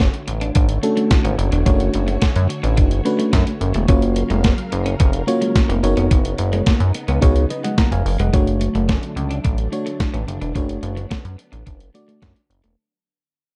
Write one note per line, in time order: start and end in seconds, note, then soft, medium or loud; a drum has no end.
0.00 3.85 D3 medium
0.00 3.85 A3 medium
0.00 0.11 C#4 medium
0.00 3.85 F#4 medium
0.00 3.85 C#5 medium
0.00 kick loud
0.00 snare loud
0.14 closed hi-hat medium
0.28 0.51 A1 medium
0.28 muted clean electric guitar stroke medium
0.28 closed hi-hat medium
0.41 0.52 D4 medium
0.41 closed hi-hat medium
0.55 0.79 G#1 loud
0.55 0.66 D4 medium
0.55 kick loud
0.55 closed hi-hat loud
0.69 closed hi-hat medium
0.83 1.30 A3 medium
0.83 1.30 C#4 medium
0.83 1.30 D4 medium
0.83 1.30 F#4 medium
0.83 1.30 A4 loud
0.83 muted clean electric guitar stroke soft
0.83 closed hi-hat medium
0.97 1.08 A3 medium
0.97 closed hi-hat medium
1.11 kick loud
1.11 snare loud
1.11 closed hi-hat loud
1.25 1.36 G#1 loud
1.25 1.36 C#4 medium
1.25 closed hi-hat medium
1.38 1.50 F#1 medium
1.38 muted clean electric guitar stroke soft
1.38 closed hi-hat medium
1.52 1.64 E1 medium
1.52 1.64 D4 medium
1.52 closed hi-hat medium
1.65 1.90 F#1 loud
1.65 2.28 A3 medium
1.65 2.28 C#4 medium
1.65 2.29 D4 medium
1.65 1.77 D4 medium
1.65 2.29 F#4 medium
1.65 2.29 C#5 loud
1.65 kick loud
1.65 closed hi-hat loud
1.80 closed hi-hat medium
1.94 2.18 F#1 medium
1.94 muted clean electric guitar stroke soft
1.94 closed hi-hat medium
2.08 2.19 A3 medium
2.08 closed hi-hat soft
2.22 2.27 F#2 soft
2.22 2.33 C#4 medium
2.22 kick loud
2.22 snare loud
2.22 closed hi-hat medium
2.36 2.48 F#2 loud
2.36 closed hi-hat medium
2.49 muted clean electric guitar stroke soft
2.49 closed hi-hat medium
2.63 2.79 A1 loud
2.63 2.74 D4 medium
2.63 closed hi-hat medium
2.77 3.01 F#1 loud
2.77 2.88 D4 medium
2.77 kick loud
2.77 closed hi-hat medium
2.91 closed hi-hat medium
3.05 3.52 A3 medium
3.05 3.52 C#4 medium
3.05 3.52 D4 medium
3.05 3.52 F#4 medium
3.05 3.52 B4 loud
3.05 muted clean electric guitar stroke soft
3.05 closed hi-hat medium
3.19 3.30 A3 medium
3.19 closed hi-hat medium
3.33 3.45 F#2 loud
3.33 3.44 C#4 medium
3.33 kick loud
3.33 snare loud
3.33 closed hi-hat loud
3.47 muted clean electric guitar stroke medium
3.47 closed hi-hat medium
3.61 3.73 F#1 loud
3.61 closed hi-hat medium
3.74 3.87 E1 medium
3.74 3.86 A3 medium
3.74 closed hi-hat medium
3.88 4.24 F#1 loud
3.88 5.81 C#3 medium
3.88 5.81 F#3 medium
3.88 4.51 A#3 medium
3.88 4.51 C#4 medium
3.88 4.00 C#4 loud
3.88 4.51 F4 medium
3.88 4.51 F#4 medium
3.88 7.19 A#4 medium
3.88 4.51 C#5 loud
3.88 5.81 F5 medium
3.88 kick loud
3.88 closed hi-hat loud
4.02 closed hi-hat medium
4.16 muted clean electric guitar stroke soft
4.16 closed hi-hat medium
4.30 4.54 F1 loud
4.30 4.41 G#3 medium
4.30 closed hi-hat soft
4.44 4.55 A#3 medium
4.44 kick loud
4.44 snare loud
4.44 closed hi-hat medium
4.58 closed hi-hat medium
4.72 4.96 F#1 loud
4.72 muted clean electric guitar stroke soft
4.72 closed hi-hat medium
4.86 4.97 C#4 medium
4.86 closed hi-hat medium
5.00 5.23 F1 loud
5.00 5.11 C#4 medium
5.00 kick loud
5.00 closed hi-hat loud
5.13 closed hi-hat medium
5.27 5.74 A#3 medium
5.27 5.74 C#4 medium
5.27 5.74 F4 medium
5.27 5.74 F#4 medium
5.27 5.74 C#5 loud
5.27 muted clean electric guitar stroke soft
5.27 closed hi-hat medium
5.41 5.52 G#3 medium
5.41 closed hi-hat medium
5.56 kick loud
5.56 snare loud
5.56 closed hi-hat loud
5.69 5.81 F1 medium
5.69 5.80 A#3 medium
5.69 closed hi-hat medium
5.83 5.95 F#1 loud
5.83 8.31 C#3 medium
5.83 6.72 B3 medium
5.83 8.31 B3 medium
5.83 6.72 D#4 medium
5.83 8.31 D#4 medium
5.83 6.72 F#4 medium
5.83 6.72 A#4 medium
5.83 6.72 C#5 loud
5.83 muted clean electric guitar stroke soft
5.83 closed hi-hat medium
5.97 6.09 F1 medium
5.97 6.08 B3 medium
5.97 closed hi-hat soft
6.11 6.34 F#1 loud
6.11 6.22 B3 medium
6.11 kick loud
6.11 closed hi-hat loud
6.25 closed hi-hat medium
6.38 6.62 F#1 loud
6.38 muted clean electric guitar stroke soft
6.38 closed hi-hat medium
6.53 6.64 G#3 medium
6.53 closed hi-hat soft
6.66 6.72 F#2 soft
6.66 6.78 A#3 medium
6.66 kick loud
6.66 snare loud
6.66 closed hi-hat medium
6.80 6.92 F#2 loud
6.80 closed hi-hat medium
6.94 muted clean electric guitar stroke medium
6.94 closed hi-hat medium
7.08 7.20 C#2 medium
7.08 7.19 B3 medium
7.08 closed hi-hat medium
7.21 7.46 C#2 loud
7.21 8.32 F#3 medium
7.21 7.44 B3 medium
7.21 7.33 B3 medium
7.21 7.44 D#4 medium
7.21 7.44 F#4 medium
7.21 7.44 G#4 medium
7.21 7.44 C#5 loud
7.21 kick loud
7.21 closed hi-hat medium
7.36 closed hi-hat medium
7.50 7.64 B4 medium
7.50 7.63 D#5 medium
7.50 muted clean electric guitar stroke medium
7.50 closed hi-hat medium
7.64 7.75 G#3 medium
7.64 7.77 D#5 medium
7.64 7.77 F#5 medium
7.64 closed hi-hat medium
7.78 7.89 A#3 medium
7.78 7.91 F#5 medium
7.78 7.91 A#5 medium
7.78 kick loud
7.78 snare loud
7.78 closed hi-hat medium
7.92 8.03 F1 loud
7.92 8.18 F5 medium
7.92 8.18 G#5 medium
7.92 muted clean electric guitar stroke soft
7.92 closed hi-hat medium
8.06 8.17 F#1 loud
8.06 open hi-hat medium
8.19 8.31 F1 medium
8.19 8.31 G#3 medium
8.19 8.46 D#5 medium
8.19 8.46 F#5 medium
8.19 closed hi-hat medium
8.33 12.74 D3 medium
8.33 12.74 F#3 medium
8.33 8.95 A3 medium
8.33 10.53 A3 medium
8.33 8.96 D4 medium
8.33 12.74 D4 medium
8.33 8.45 D4 medium
8.33 8.96 F#4 medium
8.33 8.96 C#5 loud
8.33 kick loud
8.33 closed hi-hat medium
8.47 closed hi-hat medium
8.61 muted clean electric guitar stroke soft
8.61 closed hi-hat medium
8.75 8.98 F#1 medium
8.75 8.86 A3 medium
8.75 closed hi-hat soft
8.89 9.00 C#4 medium
8.89 kick loud
8.89 snare loud
8.89 closed hi-hat medium
9.03 closed hi-hat medium
9.16 9.40 C#2 loud
9.16 muted clean electric guitar stroke soft
9.16 closed hi-hat medium
9.31 9.41 D4 medium
9.31 closed hi-hat medium
9.44 9.68 A1 loud
9.44 9.55 D4 loud
9.44 kick loud
9.44 closed hi-hat medium
9.58 closed hi-hat medium
9.72 10.19 A3 medium
9.72 10.19 D4 medium
9.72 10.19 F#4 medium
9.72 10.19 C#5 loud
9.72 muted clean electric guitar stroke soft
9.72 closed hi-hat medium
9.86 9.97 A3 medium
9.86 closed hi-hat medium
10.00 kick loud
10.00 snare loud
10.00 closed hi-hat medium
10.14 10.25 A1 medium
10.14 10.25 C#4 medium
10.14 closed hi-hat medium
10.27 10.39 F#1 loud
10.27 muted clean electric guitar stroke soft
10.27 closed hi-hat medium
10.41 10.53 E1 medium
10.41 10.52 D4 medium
10.41 closed hi-hat soft
10.55 10.79 F#1 loud
10.55 11.18 A3 medium
10.55 12.76 B3 medium
10.55 10.66 D4 loud
10.55 11.18 D4 medium
10.55 11.18 F#4 medium
10.55 11.18 C#5 medium
10.55 kick loud
10.55 closed hi-hat medium
10.69 closed hi-hat medium
10.83 11.06 F#1 loud
10.83 muted clean electric guitar stroke soft
10.83 closed hi-hat medium
10.96 11.08 A3 medium
10.96 closed hi-hat soft
11.10 11.17 F#2 soft
11.10 11.22 C#4 medium
11.10 kick loud
11.10 snare loud
11.10 closed hi-hat medium
11.25 11.36 F#2 medium
11.25 closed hi-hat medium
11.38 muted clean electric guitar stroke soft
11.38 closed hi-hat medium
11.52 11.64 A1 medium
11.52 11.63 D4 medium
11.52 closed hi-hat soft
11.66 11.90 F#1 medium
11.66 11.77 D4 medium
11.66 kick loud
11.66 closed hi-hat medium
11.80 closed hi-hat medium
11.94 12.41 A3 medium
11.94 12.41 D4 medium
11.94 12.41 F#4 medium
11.94 12.41 D5 loud
11.94 muted clean electric guitar stroke soft
11.94 closed hi-hat medium
12.08 12.19 A3 medium
12.08 closed hi-hat medium
12.22 12.34 F#2 loud
12.22 12.33 C#4 medium
12.22 kick loud
12.22 snare loud
12.22 closed hi-hat medium
12.36 muted clean electric guitar stroke soft
12.36 closed hi-hat medium
12.50 12.62 F#1 loud
12.50 closed hi-hat medium
12.64 12.75 A3 medium
12.64 closed hi-hat medium